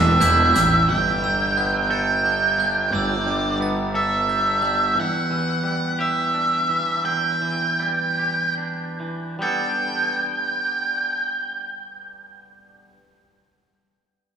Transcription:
Already playing: E1 E2 E3 G3 D4 E5 A6
0.20 E1 E4 G6, closed hi-hat
0.54 A1 G3 G6, closed hi-hat
0.88 G1 G3 G5
1.22 G3 E6
1.57 B3 F#6
1.90 A4 G5
2.24 D4 G6
2.58 G3 F#6
2.93 G1 G3 D5 E6
3.26 G3 D6
3.61 B3 A6
3.94 A4 E5
4.28 D4 G6
4.62 G3 G6
4.95 E2
5.00 F#5
5.30 E3
5.64 G3
5.99 G4 E5
6.34 D4
6.70 E3
7.05 E2 G5
7.42 E3
7.80 G3
8.19 G4
8.58 D4
9.00 E3
9.39 G3 B3 D4 A4 G5

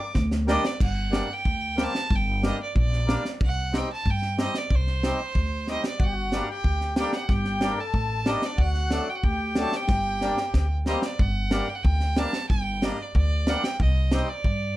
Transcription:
Already playing: D5 D6
0.15 D2, kick, snare
0.31 snare
0.47 G3 A#3 D4 D#5, snare
0.65 D5, snare
0.80 G1 F#5, kick, crash
1.12 G3 A#3 D4, snare
1.34 G5
1.45 D2, kick
1.77 G3 A#3 C4, snare
1.84 A5
1.95 snare
2.10 G1, kick
2.15 G5
2.43 G3 A#3 D4 D#5, snare
2.63 D5
2.75 A#1 D5, kick
2.93 snare
3.07 G3 A#3 D4, snare
3.25 snare
3.41 C2 F#5, kick
3.73 G3 C4 D#4, snare
3.78 G5
3.93 A5
4.06 G2, kick
4.10 G5
4.22 snare
4.38 G3 C4 D#4, snare
4.42 D#5
4.54 D5, snare
4.70 C2, kick
4.75 C5
4.87 snare
5.03 G3 C4 D#4, snare
5.35 D2, kick
5.67 G3 C4 D#4, snare
5.72 D#5
5.84 snare
5.88 D5
6.00 G1 F#4 F#5, kick
6.06 G4
6.13 F#4
6.32 G3 A#3 D4, snare
6.49 G4 G5
6.64 D2, kick
6.81 snare
6.96 G3 A#3 D4 G4 G5, snare
7.03 A4
7.09 G4, snare
7.15 F#5
7.27 G1 G4, kick, snare
7.33 G5
7.45 snare
7.61 G3 A#3 D4, snare
7.71 A#4
7.78 A4 A5
7.94 A1, kick
8.26 G3 A#3 D4 D#4 D#5, snare
8.42 D4 D5, snare
8.57 D2 F#4 F#5, kick
8.74 snare
8.90 F#3 A3 D4, snare
9.10 G5
9.15 F#5
9.23 D2 G4 G5, kick
9.55 F#3 A3 D4 A5, snare
9.72 G4, snare
9.76 G5
9.87 G1, kick, snare
10.21 G3 A#3 D4, snare
10.37 snare
10.54 D2, kick, snare
10.86 G3 A#3 C4 D#5, snare
11.02 D5, snare
11.19 G1 F#5, kick
11.51 G3 A#3 D4, snare
11.69 G5
11.75 F#5
11.84 D2 G5, kick
12.00 snare
12.16 G3 A#3 D4 A5, snare
12.33 snare
12.50 G1 G5, kick
12.82 G3 A#3 D4 D#5, snare
13.02 D5
13.15 D2 D5, kick
13.47 G3 A#3 D4 F#5, snare
13.64 G5, snare
13.80 C2 D#5, kick
14.11 G3 C4 D#4, snare
14.30 D5
14.44 G2, kick

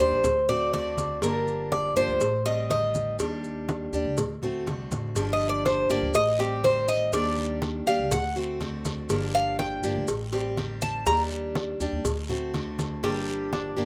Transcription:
0.00 D#2 G3 D4 G4 C5, high conga
0.11 A#1
0.23 D2, muted steel-string acoustic guitar stroke, cowbell, high conga, low conga, maracas
0.48 A3 C4 F#4 D5, high conga, low conga, maracas
0.73 D3 A3 C4 F#4 D5, cowbell, high conga, maracas
0.97 cowbell, high conga, maracas
1.22 G1 D3 F3 A#3 D4 G4 A#4, cowbell, high conga, maracas
1.47 high conga, maracas
1.72 D5, cowbell, high conga, maracas
1.96 G1 F3 A#3 D4 G4 C5, high conga, maracas
2.08 D2
2.20 A1, muted steel-string acoustic guitar stroke, cowbell, high conga, maracas
2.45 G3 C4 G4 D#5, cowbell, high conga, maracas
2.70 D#3 G3 C4 G4 D#5, cowbell, high conga, maracas
2.95 high conga, maracas
3.19 D#2 D#3 G3 D4 G4, cowbell, high conga, maracas
3.44 high conga, maracas
3.69 cowbell, high conga, maracas
3.93 D#2 G3 D4 G4, high conga, maracas
4.05 C#2
4.17 D2, muted steel-string acoustic guitar stroke, cowbell, high conga, low conga, maracas
4.42 D2 A3 C4 F#4, high conga, low conga, maracas
4.66 C2 D3 A3 C4 F#4, cowbell, high conga, maracas
4.91 A1, cowbell, high conga, maracas
5.15 G1 D3 F3 A#3 D4 G4, cowbell, high conga, long guiro, maracas
5.33 D#5
5.41 high conga, maracas
5.49 D5
5.65 C5, cowbell, high conga, short guiro, maracas
5.89 G1 F3 A#3 D4 G4 D5, high conga, short guiro, maracas
6.02 D2
6.14 A1 D#5, muted steel-string acoustic guitar stroke, cowbell, high conga, long guiro, maracas
6.39 G3 C4 G4, cowbell, high conga, maracas
6.64 D#3 G3 C4 G4 C5, cowbell, high conga, short guiro, maracas
6.88 D#5, short guiro, maracas
7.12 D#2 D#3 G3 D4 G4 D5, cowbell, high conga, long guiro, maracas
7.38 high conga, maracas
7.62 cowbell, high conga, short guiro, maracas
7.86 D#2 G3 D4 G4 F5, high conga, short guiro, maracas
7.99 C#2
8.11 D2 F#5, muted steel-string acoustic guitar stroke, cowbell, high conga, low conga, long guiro, maracas
8.36 A3 C4 F#4, high conga, maracas
8.61 D3 A3 C4 F#4, cowbell, high conga, short guiro, maracas
8.85 cowbell, high conga, short guiro, maracas
9.09 G1 D3 F3 A#3 D4 G4, cowbell, high conga, long guiro, maracas
9.34 F5, high conga, maracas
9.59 G5, cowbell, high conga, short guiro, maracas
9.83 G1 F3 A#3 D4 G4, high conga, short guiro, maracas
9.96 D2
10.08 A1, muted steel-string acoustic guitar stroke, cowbell, high conga, long guiro, maracas
10.32 G3 C4 G4, cowbell, high conga, maracas
10.57 D#3 G3 C4 G4, cowbell, high conga, short guiro, maracas
10.82 A5, high conga, short guiro, maracas
11.06 D#2 D#3 G3 D4 G4 A#5, cowbell, high conga, long guiro, maracas
11.31 high conga, maracas
11.55 cowbell, high conga, short guiro, maracas
11.80 D#2 G3 D4 G4, high conga, short guiro, maracas
11.92 D#2
12.04 D2, muted steel-string acoustic guitar stroke, cowbell, high conga, low conga, long guiro, maracas
12.29 A3 C4 F#4, high conga, low conga, maracas
12.54 D3 A3 C4 F#4, cowbell, high conga, short guiro, maracas
12.79 cowbell, high conga, short guiro, maracas
13.03 G1 D3 F3 G3 A#3 D4 G4, cowbell, high conga, long guiro
13.28 high conga
13.53 D4, cowbell, high conga, short guiro
13.76 G1 F3 A#3 D4 G4, high conga, short guiro

